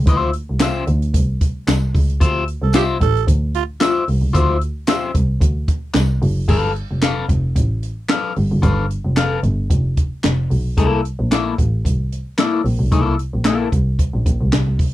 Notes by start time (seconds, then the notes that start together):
0.07 D2 F4 C5 E5, kick, closed hi-hat
0.33 closed hi-hat
0.49 C2
0.60 F4 C5 E5, snare, clap, closed hi-hat, tambourine
0.87 D2, closed hi-hat
1.02 closed hi-hat
1.14 C2, kick, closed hi-hat
1.41 kick, closed hi-hat
1.68 C2, snare, clap, closed hi-hat, tambourine
1.95 C#2, kick, open hi-hat
2.10 closed hi-hat
2.20 D2 F4 C5 E5, kick, closed hi-hat
2.48 closed hi-hat
2.62 C2 A4
2.73 F4 G4 C5 E5, snare, clap, closed hi-hat, tambourine
3.01 A1 A4, kick, closed hi-hat
3.17 closed hi-hat
3.28 D2, kick, closed hi-hat
3.54 F4, closed hi-hat
3.80 F4 C5 E5, snare, clap, closed hi-hat, tambourine
4.08 C2, open hi-hat
4.22 C#2
4.33 D2 F4 C5 E5, kick, closed hi-hat
4.61 closed hi-hat
4.87 F4 C5 E5, snare, clap, closed hi-hat, tambourine
5.15 C2, kick, closed hi-hat
5.41 D2, kick, closed hi-hat
5.68 kick, closed hi-hat
5.94 C2, snare, clap, closed hi-hat, tambourine
6.22 F#1, open hi-hat
6.48 G1 A4 B4 F5, kick, crash
6.76 closed hi-hat
6.91 F1
7.02 A4 B4 F5, snare, clap, closed hi-hat
7.29 F1, kick, closed hi-hat
7.56 A1, kick, closed hi-hat
7.83 closed hi-hat
8.09 A4 B4 F5, snare, clap, closed hi-hat
8.36 G1, open hi-hat
8.52 F#1
8.62 G1 A4 B4 F5, kick, closed hi-hat
8.91 closed hi-hat
9.05 F1
9.17 A4 B4 F5, snare, clap, closed hi-hat
9.43 G1, closed hi-hat
9.70 F1, kick, closed hi-hat
9.97 kick, closed hi-hat
10.24 F1, snare, clap, closed hi-hat
10.51 B1, open hi-hat
10.77 C2 A#3 E4 A4, kick, closed hi-hat
11.05 closed hi-hat
11.20 A#1
11.31 A#3 E4 A4, snare, clap, closed hi-hat
11.58 A1, kick, closed hi-hat
11.85 C2, kick, closed hi-hat
12.12 closed hi-hat
12.38 A#3 E4 A4, snare, clap, closed hi-hat
12.64 A#1, open hi-hat
12.79 B1
12.92 C2 A#3 E4 A4, kick, closed hi-hat
13.19 closed hi-hat
13.33 A#1
13.45 A#3 E4 A4, snare, clap, closed hi-hat
13.72 C2, kick, closed hi-hat
13.99 kick, closed hi-hat
14.14 A#1
14.26 A#1, kick, closed hi-hat
14.41 C2
14.53 C3, snare, clap, closed hi-hat
14.67 C2
14.79 kick, open hi-hat